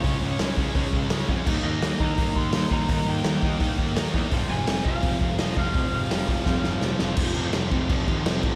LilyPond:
<<
  \new Staff \with { instrumentName = "Overdriven electric guitar" } { \time 4/4 \key f \minor \tempo 4 = 168 des''4. r2 r8 | r8 ees''4 bes''4 c'''4 bes''8 | bes''8 g''2 r4. | r8 aes''4 f''4. ees''8 f''8~ |
f''2.~ f''8 r8 | r1 | }
  \new Staff \with { instrumentName = "Distorted electric guitar" } { \clef bass \time 4/4 \key f \minor <des aes des' f'>2 <des aes des' f'>2 | <ees g bes ees'>2 <ees g bes ees'>2 | <ees g bes ees'>2 <ees g bes ees'>2 | <f, c f aes c'>2 <f, c f aes c'>2 |
<f, c f aes c'>2 <f, c f aes c'>2 | r1 | }
  \new Staff \with { instrumentName = "Distorted electric guitar" } { \clef bass \time 4/4 \key f \minor <des aes des'>4 <des aes des'>8 <des aes des'>8 <des aes des'>4 <des aes des'>8 <des aes des'>8 | <ees bes ees'>4 <ees bes ees'>8 <ees bes ees'>8 <ees bes ees'>4 <ees bes ees'>8 <ees bes ees'>8 | <ees bes ees'>4 <ees bes ees'>8 <ees bes ees'>8 <ees bes ees'>4 <ees bes ees'>8 <ees bes ees'>8 | <f, c f>4 <f, c f>8 <f, c f>8 <f, c f>4 <f, c f>8 <f, c f>8 |
<f, c f>4 <f, c f>8 <f, c f>8 <f, c f>4 <f, c f>8 <f, c f>8 | <f, c f>8 <f, c f>8 <f, c f>8 <f, c f>8 <f, c f>8 <f, c f>8 <f, c f>8 <f, c f>8 | }
  \new Staff \with { instrumentName = "Distorted electric guitar" } { \clef bass \time 4/4 \key f \minor <des aes des'>4 <des aes des'>8 <des aes des'>8 <des aes des'>4 <des aes des'>8 <des aes des'>8 | <ees bes ees'>4 <ees bes ees'>8 <ees bes ees'>8 <ees bes ees'>4 <ees bes ees'>8 <ees bes ees'>8 | <ees bes ees'>4 <ees bes ees'>8 <ees bes ees'>8 <ees bes ees'>4 <ees bes ees'>8 <ees bes ees'>8 | <f, c f>4 <f, c f>8 <f, c f>8 <f, c f>4 <f, c f>8 <f, c f>8 |
<f, c f>4 <f, c f>8 <f, c f>8 <f, c f>4 <f, c f>8 <f, c f>8 | <f, c f>8 <f, c f>8 <f, c f>8 <f, c f>8 <f, c f>8 <f, c f>8 <f, c f>8 <f, c f>8 | }
  \new Staff \with { instrumentName = "Picked electric bass" } { \clef bass \time 4/4 \key f \minor des,8 des,8 des,8 des,8 des,8 des,8 des,8 f,8 | ees,8 ees,8 ees,8 ees,8 ees,8 ees,8 ees,8 ees,8 | ees,8 ees,8 ees,8 ees,8 ees,8 ees,8 ees,8 e,8 | f,,8 f,,8 f,,8 f,,8 f,,8 f,,8 f,,8 f,,8 |
f,,8 f,,8 f,,8 f,,8 f,,8 f,,8 f,,8 f,,8 | f,,8 f,,8 f,,8 f,,8 f,,8 ees,8 f,,8 a,,8 | }
  \new DrumStaff \with { instrumentName = "Drums" } \drummode { \time 4/4 <hho bd>4 <hho sn>8 bd8 <hho bd>8 bd8 <hho sn>8 bd8 | <cymc bd>4 <hho sn>8 bd8 <hho bd>8 bd8 <hho sn>8 bd8 | <hho bd>4 <hho sn>8 bd8 <hho bd>8 bd8 <hho sn>8 bd8 | <hho bd>4 <hho sn>8 bd8 <hho bd>8 bd8 <hho sn>8 bd8 |
<hho bd>4 <hho sn>8 bd8 <bd sn>8 sn8 sn8 sn8 | <cymc bd>8 cymc8 <cymc sn>8 <cymc bd>8 <cymc bd>8 <cymc bd>8 <cymc sn>8 <cymc bd>8 | }
>>